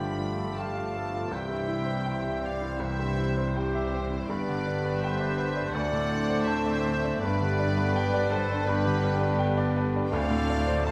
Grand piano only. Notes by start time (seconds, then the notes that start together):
Already playing: G2
0.00 D3
0.18 F4
0.38 A4
0.58 G5
0.77 F5
0.96 A4
1.13 F4
1.31 C2
1.49 G2
1.68 E4
1.86 C5
2.05 G5
2.23 E5
2.41 C5
2.61 E4
2.79 C2
2.99 G2
3.17 E4
3.37 C5
3.56 G5
3.75 E5
3.93 C5
4.11 E4
4.30 G2
4.49 D3
4.67 D4
4.85 B4
5.04 G5
5.20 D5
5.38 B4
5.56 D4
5.74 D2
5.92 A2
6.11 D4
6.29 C5
6.47 A5
6.66 D5
6.85 C5
7.04 D4
7.24 G2
7.41 D3
7.59 D4
7.78 B4
7.96 G5
8.14 D5
8.32 B4
8.51 D4
8.69 G2
8.87 D3
9.04 D4
9.21 B4
9.39 G5
9.57 D5
9.76 B4
9.96 D4
10.13 D2
10.30 A2
10.49 D4
10.67 C5
10.86 A5